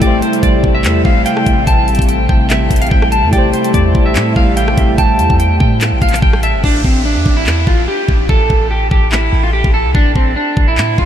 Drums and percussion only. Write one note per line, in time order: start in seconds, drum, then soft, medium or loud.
0.02 kick loud
0.02 closed hi-hat medium
0.22 closed hi-hat medium
0.33 closed hi-hat medium
0.43 kick medium
0.43 closed hi-hat medium
0.64 kick loud
0.84 clap loud
0.84 closed hi-hat medium
1.05 kick medium
1.26 closed hi-hat medium
1.37 cross-stick loud
1.46 kick loud
1.46 closed hi-hat medium
1.67 kick loud
1.67 closed hi-hat medium
1.88 closed hi-hat soft
1.95 closed hi-hat medium
1.99 kick loud
1.99 closed hi-hat medium
2.09 closed hi-hat medium
2.29 kick loud
2.50 clap loud
2.50 closed hi-hat medium
2.71 kick medium
2.71 closed hi-hat medium
2.76 closed hi-hat medium
2.82 closed hi-hat medium
2.87 closed hi-hat medium
2.91 kick loud
3.02 cross-stick loud
3.12 closed hi-hat medium
3.33 kick loud
3.33 closed hi-hat medium
3.53 closed hi-hat medium
3.64 closed hi-hat medium
3.74 kick loud
3.74 closed hi-hat medium
3.95 kick loud
4.16 clap loud
4.16 closed hi-hat medium
4.36 kick medium
4.57 closed hi-hat medium
4.68 cross-stick loud
4.78 kick loud
4.78 closed hi-hat medium
4.98 kick loud
4.98 closed hi-hat medium
5.19 closed hi-hat medium
5.30 kick loud
5.40 closed hi-hat medium
5.60 kick loud
5.81 clap loud
5.81 closed hi-hat medium
6.02 kick medium
6.02 closed hi-hat medium
6.09 closed hi-hat medium
6.13 clap medium
6.13 closed hi-hat medium
6.22 kick loud
6.33 cross-stick loud
6.43 closed hi-hat medium
6.64 kick loud
6.84 kick medium
7.26 kick loud
7.47 clap loud
7.67 kick medium
8.09 kick loud
8.29 kick loud
8.50 kick medium
8.91 kick loud
9.12 clap loud
9.64 kick loud
9.95 kick loud
10.15 kick medium
10.57 kick loud
10.78 clap loud
10.98 kick medium